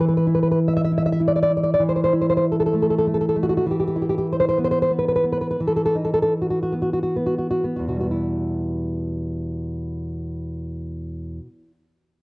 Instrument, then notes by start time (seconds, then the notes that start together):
nylon-string guitar
Already playing: E3
0.00 B4
0.08 B4
0.17 B4
0.27 E4
0.35 B4
0.43 B4
0.51 B4
0.68 E5
0.77 E5
0.84 E5
0.92 E4
0.98 E5
1.06 E5
1.12 E5
1.20 E4
1.28 D5
1.36 D5
1.43 D5
1.50 E4
1.57 D5
1.63 D5
1.74 D5
1.79 E3
1.89 C5
1.96 C5
2.04 C5
2.13 E4
2.21 C5
2.30 C5
2.37 C5
2.52 A4
2.60 A4
2.66 A4
2.73 A3
2.82 A4
2.90 A4
2.98 A4
3.07 A3
3.14 A4
3.21 A4
3.29 A4
3.36 A3
3.43 F#4
3.49 F#4
3.57 F#4
3.66 E3
3.71 G4
3.80 G4
3.88 G4
3.96 E4
4.02 G4
4.09 G4
4.18 G4
4.33 C5
4.40 C5
4.49 C5
4.58 B3
4.64 C5
4.71 C5
4.82 C5
4.90 B3
4.99 B4
5.08 B4
5.16 B4
5.24 B3
5.32 B4
5.41 B4
5.51 B4
5.60 E3
5.67 A4
5.76 A4
5.86 A4
5.95 D#4
6.05 A4
6.14 A4
6.22 A4
6.42 F#4
6.50 F#4
6.63 F#4
6.72 B3
6.82 F#4
6.93 F#4
7.03 F#4
7.16 B3
7.26 F#4
7.38 F#4
7.51 F#4
7.64 B3
7.76 E2 F#4
7.88 B2 F#4
7.95 G3
8.01 B3 F#4
8.11 E4